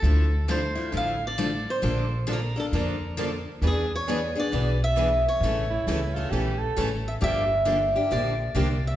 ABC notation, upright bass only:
X:1
M:4/4
L:1/8
Q:"Swing" 1/4=134
K:Dm
V:1 name="Upright bass" clef=bass
D,,4 A,,,4 | B,,,4 F,,4 | E,,4 =B,,,4 | A,,,2 ^C,,2 B,,,2 A,,,2 |
G,,,4 B,,,2 C,,2 |]